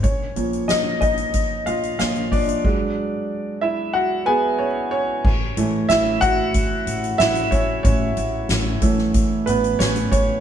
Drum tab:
CC |----------------|x---------------|x---------------|----------------|
HH |x-xxx-xxx-xxxxox|----------------|--x-x-x-x-xxxxx-|x-x-x-x-x-xxxxx-|
SD |----o-------o---|----------------|----o-------o---|----o--o----o---|
BD |o-----o-o-----o-|o---------------|o-----o-o-----o-|o-----o-o-----o-|